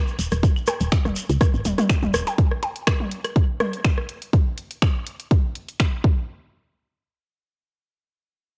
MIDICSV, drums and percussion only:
0, 0, Header, 1, 4, 480
1, 0, Start_track
1, 0, Tempo, 487805
1, 425, Time_signature, 4, 2, 24, 8
1, 8441, End_track
2, 0, Start_track
2, 0, Title_t, "Percussion blips"
2, 666, Note_on_c, 9, 56, 76
2, 764, Note_off_c, 9, 56, 0
2, 2234, Note_on_c, 9, 56, 85
2, 2333, Note_off_c, 9, 56, 0
2, 2585, Note_on_c, 9, 56, 78
2, 2683, Note_off_c, 9, 56, 0
2, 8441, End_track
3, 0, Start_track
3, 0, Title_t, "Shekere"
3, 72, Note_on_c, 9, 82, 25
3, 170, Note_off_c, 9, 82, 0
3, 190, Note_on_c, 9, 82, 97
3, 288, Note_off_c, 9, 82, 0
3, 308, Note_on_c, 9, 82, 41
3, 406, Note_off_c, 9, 82, 0
3, 427, Note_on_c, 9, 82, 55
3, 525, Note_off_c, 9, 82, 0
3, 555, Note_on_c, 9, 82, 23
3, 654, Note_off_c, 9, 82, 0
3, 655, Note_on_c, 9, 82, 92
3, 754, Note_off_c, 9, 82, 0
3, 788, Note_on_c, 9, 82, 38
3, 887, Note_off_c, 9, 82, 0
3, 904, Note_on_c, 9, 82, 57
3, 1003, Note_off_c, 9, 82, 0
3, 1034, Note_on_c, 9, 82, 26
3, 1132, Note_off_c, 9, 82, 0
3, 1138, Note_on_c, 9, 82, 95
3, 1236, Note_off_c, 9, 82, 0
3, 1277, Note_on_c, 9, 82, 39
3, 1376, Note_off_c, 9, 82, 0
3, 1386, Note_on_c, 9, 82, 55
3, 1484, Note_off_c, 9, 82, 0
3, 1514, Note_on_c, 9, 82, 25
3, 1613, Note_off_c, 9, 82, 0
3, 1623, Note_on_c, 9, 82, 86
3, 1721, Note_off_c, 9, 82, 0
3, 1756, Note_on_c, 9, 82, 35
3, 1855, Note_off_c, 9, 82, 0
3, 1867, Note_on_c, 9, 82, 50
3, 1965, Note_off_c, 9, 82, 0
3, 1991, Note_on_c, 9, 82, 27
3, 2089, Note_off_c, 9, 82, 0
3, 2105, Note_on_c, 9, 82, 86
3, 2203, Note_off_c, 9, 82, 0
3, 2234, Note_on_c, 9, 82, 36
3, 2333, Note_off_c, 9, 82, 0
3, 8441, End_track
4, 0, Start_track
4, 0, Title_t, "Drums"
4, 185, Note_on_c, 9, 42, 100
4, 283, Note_off_c, 9, 42, 0
4, 314, Note_on_c, 9, 42, 50
4, 315, Note_on_c, 9, 37, 39
4, 412, Note_off_c, 9, 42, 0
4, 413, Note_off_c, 9, 37, 0
4, 425, Note_on_c, 9, 36, 116
4, 425, Note_on_c, 9, 42, 38
4, 524, Note_off_c, 9, 36, 0
4, 524, Note_off_c, 9, 42, 0
4, 554, Note_on_c, 9, 75, 72
4, 653, Note_off_c, 9, 75, 0
4, 665, Note_on_c, 9, 42, 90
4, 666, Note_on_c, 9, 37, 79
4, 763, Note_off_c, 9, 42, 0
4, 764, Note_off_c, 9, 37, 0
4, 794, Note_on_c, 9, 42, 53
4, 892, Note_off_c, 9, 42, 0
4, 905, Note_on_c, 9, 26, 89
4, 905, Note_on_c, 9, 36, 97
4, 905, Note_on_c, 9, 42, 44
4, 1003, Note_off_c, 9, 26, 0
4, 1003, Note_off_c, 9, 42, 0
4, 1004, Note_off_c, 9, 36, 0
4, 1035, Note_on_c, 9, 37, 39
4, 1035, Note_on_c, 9, 48, 51
4, 1133, Note_off_c, 9, 37, 0
4, 1133, Note_off_c, 9, 48, 0
4, 1145, Note_on_c, 9, 42, 90
4, 1243, Note_off_c, 9, 42, 0
4, 1273, Note_on_c, 9, 42, 52
4, 1372, Note_off_c, 9, 42, 0
4, 1385, Note_on_c, 9, 36, 125
4, 1385, Note_on_c, 9, 37, 83
4, 1385, Note_on_c, 9, 42, 41
4, 1483, Note_off_c, 9, 42, 0
4, 1484, Note_off_c, 9, 36, 0
4, 1484, Note_off_c, 9, 37, 0
4, 1625, Note_on_c, 9, 42, 86
4, 1626, Note_on_c, 9, 48, 56
4, 1723, Note_off_c, 9, 42, 0
4, 1724, Note_off_c, 9, 48, 0
4, 1753, Note_on_c, 9, 42, 52
4, 1754, Note_on_c, 9, 37, 41
4, 1754, Note_on_c, 9, 48, 82
4, 1852, Note_off_c, 9, 37, 0
4, 1852, Note_off_c, 9, 42, 0
4, 1852, Note_off_c, 9, 48, 0
4, 1865, Note_on_c, 9, 26, 86
4, 1865, Note_on_c, 9, 36, 96
4, 1865, Note_on_c, 9, 42, 42
4, 1865, Note_on_c, 9, 75, 68
4, 1963, Note_off_c, 9, 26, 0
4, 1963, Note_off_c, 9, 42, 0
4, 1964, Note_off_c, 9, 36, 0
4, 1964, Note_off_c, 9, 75, 0
4, 1994, Note_on_c, 9, 48, 77
4, 2092, Note_off_c, 9, 48, 0
4, 2105, Note_on_c, 9, 42, 91
4, 2106, Note_on_c, 9, 37, 80
4, 2203, Note_off_c, 9, 42, 0
4, 2204, Note_off_c, 9, 37, 0
4, 2233, Note_on_c, 9, 42, 51
4, 2332, Note_off_c, 9, 42, 0
4, 2344, Note_on_c, 9, 42, 42
4, 2345, Note_on_c, 9, 36, 118
4, 2443, Note_off_c, 9, 36, 0
4, 2443, Note_off_c, 9, 42, 0
4, 2474, Note_on_c, 9, 37, 42
4, 2572, Note_off_c, 9, 37, 0
4, 2584, Note_on_c, 9, 42, 87
4, 2683, Note_off_c, 9, 42, 0
4, 2713, Note_on_c, 9, 42, 55
4, 2812, Note_off_c, 9, 42, 0
4, 2824, Note_on_c, 9, 37, 84
4, 2825, Note_on_c, 9, 26, 92
4, 2825, Note_on_c, 9, 36, 98
4, 2825, Note_on_c, 9, 42, 43
4, 2923, Note_off_c, 9, 26, 0
4, 2923, Note_off_c, 9, 37, 0
4, 2923, Note_off_c, 9, 42, 0
4, 2924, Note_off_c, 9, 36, 0
4, 2953, Note_on_c, 9, 48, 51
4, 3051, Note_off_c, 9, 48, 0
4, 3064, Note_on_c, 9, 42, 92
4, 3163, Note_off_c, 9, 42, 0
4, 3193, Note_on_c, 9, 37, 40
4, 3193, Note_on_c, 9, 42, 55
4, 3193, Note_on_c, 9, 75, 74
4, 3291, Note_off_c, 9, 42, 0
4, 3292, Note_off_c, 9, 37, 0
4, 3292, Note_off_c, 9, 75, 0
4, 3305, Note_on_c, 9, 36, 117
4, 3305, Note_on_c, 9, 42, 43
4, 3403, Note_off_c, 9, 36, 0
4, 3403, Note_off_c, 9, 42, 0
4, 3544, Note_on_c, 9, 42, 83
4, 3545, Note_on_c, 9, 37, 89
4, 3545, Note_on_c, 9, 48, 58
4, 3643, Note_off_c, 9, 37, 0
4, 3643, Note_off_c, 9, 42, 0
4, 3643, Note_off_c, 9, 48, 0
4, 3673, Note_on_c, 9, 42, 57
4, 3772, Note_off_c, 9, 42, 0
4, 3784, Note_on_c, 9, 26, 85
4, 3784, Note_on_c, 9, 42, 45
4, 3785, Note_on_c, 9, 36, 100
4, 3882, Note_off_c, 9, 26, 0
4, 3882, Note_off_c, 9, 42, 0
4, 3883, Note_off_c, 9, 36, 0
4, 3914, Note_on_c, 9, 37, 42
4, 4012, Note_off_c, 9, 37, 0
4, 4024, Note_on_c, 9, 42, 96
4, 4122, Note_off_c, 9, 42, 0
4, 4153, Note_on_c, 9, 42, 53
4, 4251, Note_off_c, 9, 42, 0
4, 4265, Note_on_c, 9, 36, 122
4, 4265, Note_on_c, 9, 42, 42
4, 4363, Note_off_c, 9, 36, 0
4, 4363, Note_off_c, 9, 42, 0
4, 4504, Note_on_c, 9, 42, 93
4, 4603, Note_off_c, 9, 42, 0
4, 4633, Note_on_c, 9, 42, 60
4, 4732, Note_off_c, 9, 42, 0
4, 4745, Note_on_c, 9, 26, 95
4, 4745, Note_on_c, 9, 36, 106
4, 4745, Note_on_c, 9, 42, 46
4, 4843, Note_off_c, 9, 26, 0
4, 4843, Note_off_c, 9, 36, 0
4, 4843, Note_off_c, 9, 42, 0
4, 4984, Note_on_c, 9, 42, 93
4, 5083, Note_off_c, 9, 42, 0
4, 5113, Note_on_c, 9, 42, 55
4, 5212, Note_off_c, 9, 42, 0
4, 5225, Note_on_c, 9, 36, 123
4, 5225, Note_on_c, 9, 42, 45
4, 5323, Note_off_c, 9, 36, 0
4, 5323, Note_off_c, 9, 42, 0
4, 5464, Note_on_c, 9, 42, 88
4, 5563, Note_off_c, 9, 42, 0
4, 5593, Note_on_c, 9, 42, 58
4, 5692, Note_off_c, 9, 42, 0
4, 5704, Note_on_c, 9, 26, 96
4, 5704, Note_on_c, 9, 42, 42
4, 5705, Note_on_c, 9, 36, 99
4, 5803, Note_off_c, 9, 26, 0
4, 5803, Note_off_c, 9, 36, 0
4, 5803, Note_off_c, 9, 42, 0
4, 5945, Note_on_c, 9, 36, 117
4, 6043, Note_off_c, 9, 36, 0
4, 8441, End_track
0, 0, End_of_file